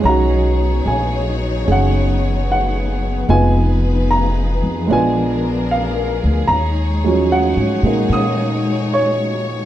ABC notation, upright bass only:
X:1
M:4/4
L:1/8
Q:"Swing" 1/4=74
K:Ebm
V:1 name="Upright bass" clef=bass
=B,,,2 _B,,,2 ^F,,,4 | F,,,3 F,, B,,,3 =D,, | E,,2- (3E,, A,, B,, B,,4 |]